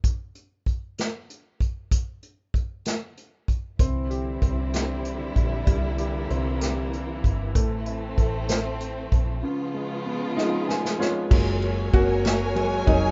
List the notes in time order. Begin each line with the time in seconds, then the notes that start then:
0.04 kick, closed hi-hat
0.35 closed hi-hat
0.66 kick, closed hi-hat
0.98 snare, closed hi-hat
1.30 closed hi-hat
1.60 kick, closed hi-hat
1.91 kick, closed hi-hat
2.23 closed hi-hat
2.54 kick, closed hi-hat
2.85 snare, closed hi-hat
3.17 closed hi-hat
3.48 kick, closed hi-hat
3.79 C2 D3 E3 G3 C4 E4, kick, closed hi-hat
4.10 G4, closed hi-hat
4.42 C2 C4, kick, closed hi-hat
4.74 G4, snare, closed hi-hat
5.05 closed hi-hat
5.36 A#1, kick, closed hi-hat
5.67 C2 G3 A#3, kick, closed hi-hat
5.98 G4, closed hi-hat
6.30 C2 C4, closed hi-hat
6.61 G4, snare, closed hi-hat
6.93 closed hi-hat
7.24 G1, kick, closed hi-hat
7.55 A1 A3 C4, kick, closed hi-hat
7.86 E4, closed hi-hat
8.18 A1 A4, kick, closed hi-hat
8.49 C5, snare, closed hi-hat
8.80 closed hi-hat
9.12 A#1, kick, closed hi-hat
9.43 C#3 F3 G#3 B3 F4
9.74 G#3
10.06 B3
10.37 G#3 D#4 F4, snare
10.68 G#5, snare
10.85 snare
10.99 G#3 F4 C#5, snare
11.31 F#1 F#3 G#3 A#3 A#4 C#5 G#5, kick, crash
11.62 ride
11.94 F#1 A#3 F#4, kick, ride
12.25 snare, ride
12.55 F#3 G#3 A#3, ride
12.87 F1 F#3 D#4, kick, ride